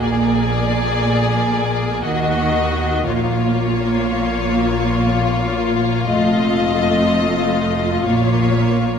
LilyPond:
<<
  \new Staff \with { instrumentName = "Violin section" } { \time 3/4 \key bes \phrygian \tempo 4 = 60 d''2 ees''4 | des''2. | ees''2 des''4 | }
  \new Staff \with { instrumentName = "Violin section" } { \time 3/4 \key bes \phrygian aes'2 ges'4 | f'2.~ | f'2. | }
  \new Staff \with { instrumentName = "Viola section" } { \time 3/4 \key bes \phrygian bes2. | bes2. | a2 bes4 | }
  \new Staff \with { instrumentName = "Cello section" } { \clef bass \time 3/4 \key bes \phrygian bes,2 ees4 | bes,2. | f,2 bes,4 | }
  \new Staff \with { instrumentName = "Double bass section" } { \clef bass \time 3/4 \key bes \phrygian bes,,2 ees,4 | bes,,2. | f,,2 bes,,4 | }
>>